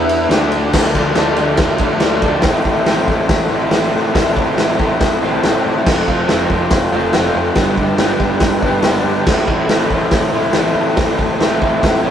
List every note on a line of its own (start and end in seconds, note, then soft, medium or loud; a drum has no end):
0.00 0.27 E2 loud
0.00 0.29 E3 medium
0.00 0.30 B3 loud
0.00 0.30 E4 loud
0.00 0.31 E4 medium
0.00 0.31 B4 medium
0.00 0.31 E5 medium
0.09 ride medium
0.29 0.69 D2 loud
0.29 0.72 D3 loud
0.29 0.73 A3 loud
0.29 0.72 D4 medium
0.29 0.73 D4 loud
0.29 0.72 A4 medium
0.29 0.72 D5 medium
0.29 snare loud
0.29 ride loud
0.52 ride medium
0.73 0.94 D2 loud
0.73 0.92 D3 loud
0.73 0.93 F3 loud
0.73 0.93 A3 loud
0.73 0.94 D4 loud
0.73 2.41 F4 medium
0.73 2.40 A4 medium
0.73 2.41 D5 medium
0.73 kick loud
0.73 snare loud
0.73 crash loud
0.93 1.15 D2 loud
0.93 1.14 D3 medium
0.93 1.15 F3 medium
0.93 1.15 A3 medium
0.93 1.16 D4 loud
0.93 kick medium
0.93 ride medium
1.15 1.57 D2 medium
1.15 1.35 D3 loud
1.15 1.36 F3 loud
1.15 1.37 A3 loud
1.15 1.37 D4 loud
1.15 snare loud
1.15 ride loud
1.36 1.57 D3 loud
1.36 1.58 F3 loud
1.36 1.59 A3 loud
1.36 1.59 D4 loud
1.36 ride medium
1.57 1.79 D2 medium
1.57 1.79 D3 loud
1.57 1.79 F3 loud
1.57 1.80 A3 loud
1.57 1.81 D4 loud
1.57 kick loud
1.57 snare loud
1.57 ride loud
1.78 1.99 A2 medium
1.78 2.00 D3 loud
1.78 2.00 F3 loud
1.78 2.01 A3 loud
1.78 2.01 D4 loud
1.78 kick loud
1.78 ride medium
2.00 2.41 D2 loud
2.00 2.21 D3 loud
2.00 2.22 F3 loud
2.00 2.22 A3 loud
2.00 2.23 D4 loud
2.00 snare loud
2.00 ride loud
2.22 2.42 D3 medium
2.22 2.43 F3 medium
2.22 2.43 A3 medium
2.22 2.43 D4 loud
2.22 kick medium
2.22 ride medium
2.42 2.58 A1 loud
2.42 2.86 A2 medium
2.42 2.86 E3 loud
2.42 5.82 E4 medium
2.42 5.82 A4 medium
2.42 kick loud
2.42 snare loud
2.42 open hi-hat medium
2.46 2.68 A3 loud
2.46 2.66 C4 loud
2.46 2.64 E4 loud
2.46 5.83 C5 medium
2.64 2.79 A1 medium
2.64 2.88 A3 medium
2.64 2.88 C4 medium
2.64 2.89 E4 medium
2.64 kick medium
2.85 3.00 A1 medium
2.85 4.13 A2 loud
2.85 3.70 E3 loud
2.85 3.10 A3 loud
2.85 3.08 C4 loud
2.85 snare loud
2.85 open hi-hat medium
2.90 3.06 E4 loud
3.06 3.22 A1 medium
3.06 3.51 C4 medium
3.06 3.47 E4 medium
3.06 kick medium
3.11 3.53 A3 medium
3.29 3.44 A1 loud
3.29 kick loud
3.29 snare loud
3.29 open hi-hat medium
3.48 3.65 A1 medium
3.48 3.73 C4 medium
3.48 3.73 E4 medium
3.53 3.72 A3 medium
3.70 3.87 A1 loud
3.70 4.13 E3 medium
3.70 4.15 A3 medium
3.70 4.16 C4 loud
3.70 snare loud
3.70 open hi-hat medium
3.74 4.16 E4 medium
3.96 4.09 A2 medium
4.13 4.29 A1 loud
4.13 4.53 A2 loud
4.13 4.54 E3 loud
4.13 4.37 A3 loud
4.13 4.35 C4 loud
4.13 kick loud
4.13 snare loud
4.13 open hi-hat medium
4.17 4.32 E4 loud
4.34 4.51 A1 medium
4.34 4.58 C4 medium
4.34 4.57 E4 medium
4.34 kick medium
4.38 4.56 A3 medium
4.54 4.99 A2 medium
4.54 4.99 E3 loud
4.54 4.81 A3 medium
4.54 4.79 C4 loud
4.54 4.76 E4 loud
4.54 snare loud
4.54 open hi-hat medium
4.59 4.73 A1 medium
4.77 4.93 A1 medium
4.77 5.24 A3 medium
4.77 5.22 C4 medium
4.77 5.20 E4 medium
4.77 kick medium
5.00 5.15 A1 loud
5.00 kick loud
5.00 snare loud
5.00 open hi-hat medium
5.21 5.37 A1 medium
5.21 5.44 C4 medium
5.21 5.45 E4 medium
5.21 5.32 C6 medium
5.25 5.43 A3 medium
5.33 5.43 A5 medium
5.42 5.58 A1 loud
5.42 5.84 E3 medium
5.42 5.85 A3 medium
5.42 5.86 C4 medium
5.42 5.86 E4 medium
5.42 5.63 G5 medium
5.42 snare loud
5.42 open hi-hat medium
5.64 5.80 A2 medium
5.64 5.84 D5 medium
5.84 6.01 F1 medium
5.84 6.26 F3 loud
5.84 6.09 A3 loud
5.84 6.08 C4 loud
5.84 7.53 F4 medium
5.84 7.53 A4 medium
5.84 7.53 C5 medium
5.84 kick loud
5.84 snare loud
5.84 crash loud
5.88 6.06 F4 loud
6.07 6.22 F1 medium
6.07 6.28 A3 medium
6.07 6.29 C4 medium
6.07 6.31 F4 medium
6.07 kick medium
6.27 6.44 F1 medium
6.27 6.71 F3 loud
6.27 6.52 A3 medium
6.27 6.50 C4 loud
6.27 snare loud
6.27 open hi-hat medium
6.32 6.48 F4 loud
6.49 6.64 F1 loud
6.49 6.95 A3 medium
6.49 6.94 C4 medium
6.49 6.91 F4 medium
6.49 kick medium
6.70 6.86 F1 medium
6.70 kick loud
6.70 snare loud
6.70 open hi-hat medium
6.92 7.07 F1 loud
6.92 7.15 C4 medium
6.92 7.16 F4 medium
6.96 7.14 A3 medium
7.13 7.29 F1 loud
7.13 7.55 F3 medium
7.13 7.56 A3 medium
7.13 7.57 C4 medium
7.13 snare loud
7.13 open hi-hat medium
7.17 7.57 F4 medium
7.35 7.49 F2 medium
7.55 7.71 G1 loud
7.55 7.96 G2 medium
7.55 7.98 D3 loud
7.55 7.80 G3 medium
7.55 7.78 B3 loud
7.55 9.24 D4 medium
7.55 9.23 G4 medium
7.55 9.24 B4 medium
7.55 kick loud
7.55 snare loud
7.55 open hi-hat medium
7.60 7.76 D4 loud
7.77 7.92 G1 medium
7.77 8.00 B3 medium
7.77 8.01 D4 medium
7.77 kick medium
7.81 7.99 G3 medium
7.98 8.13 G1 medium
7.98 8.41 G2 loud
7.98 8.42 D3 loud
7.98 8.22 G3 medium
7.98 8.21 B3 loud
7.98 snare loud
7.98 open hi-hat medium
8.02 8.19 D4 loud
8.20 8.34 G1 medium
8.20 8.65 G3 medium
8.20 8.63 B3 medium
8.20 8.61 D4 medium
8.20 kick medium
8.40 8.55 G1 medium
8.40 kick loud
8.40 snare loud
8.40 open hi-hat medium
8.62 8.77 G1 medium
8.62 8.86 B3 medium
8.62 8.87 D4 medium
8.62 kick medium
8.67 8.85 G3 medium
8.82 8.98 G1 loud
8.82 9.26 D3 medium
8.82 9.27 G3 medium
8.82 snare loud
8.82 open hi-hat medium
8.87 9.27 B3 medium
8.87 9.28 D4 loud
9.04 9.19 G2 medium
9.26 9.41 A1 loud
9.26 9.68 A2 medium
9.26 9.69 E3 loud
9.26 9.51 A3 medium
9.26 9.49 C4 loud
9.26 12.11 E4 medium
9.26 9.47 E4 loud
9.26 12.11 A4 medium
9.26 12.11 C5 medium
9.26 kick loud
9.26 snare loud
9.26 crash loud
9.47 9.62 A1 medium
9.47 9.70 A3 medium
9.47 9.71 C4 medium
9.47 9.72 E4 medium
9.47 kick medium
9.68 9.83 A1 medium
9.68 10.96 A2 loud
9.68 10.54 E3 loud
9.68 9.93 A3 loud
9.68 9.91 C4 loud
9.68 snare loud
9.68 open hi-hat medium
9.72 9.89 E4 medium
9.89 10.05 A1 loud
9.89 10.35 C4 medium
9.89 10.32 E4 medium
9.89 kick medium
9.94 10.36 A3 medium
10.11 10.26 A1 medium
10.11 kick loud
10.11 snare loud
10.11 open hi-hat medium
10.32 10.47 A1 medium
10.32 10.57 C4 medium
10.32 10.57 E4 medium
10.36 10.56 A3 medium
10.53 10.69 A1 medium
10.53 10.96 E3 medium
10.53 10.98 A3 medium
10.53 snare loud
10.53 open hi-hat medium
10.57 10.99 C4 medium
10.57 10.99 E4 medium
10.75 10.90 A2 medium
10.96 11.11 A1 medium
10.96 11.37 A2 loud
10.96 11.38 E3 loud
10.96 11.22 A3 loud
10.96 11.19 C4 loud
10.96 kick loud
10.96 snare loud
10.96 open hi-hat medium
11.00 11.16 E4 loud
11.17 11.33 A1 medium
11.17 11.41 C4 medium
11.17 11.42 E4 medium
11.17 kick medium
11.22 11.40 A3 medium
11.38 11.54 A1 medium
11.38 11.82 A2 loud
11.38 11.82 E3 loud
11.38 11.65 A3 loud
11.38 11.63 C4 loud
11.38 snare loud
11.38 open hi-hat medium
11.43 11.60 E4 loud
11.61 11.76 A1 loud
11.61 12.04 C4 medium
11.61 12.02 E4 medium
11.61 kick medium
11.65 12.05 A3 medium
11.83 11.97 A1 medium
11.83 kick loud
11.83 snare loud
11.83 open hi-hat medium
12.03 12.11 A1 medium
12.03 12.11 A3 medium
12.03 12.11 C4 medium
12.03 12.11 E4 medium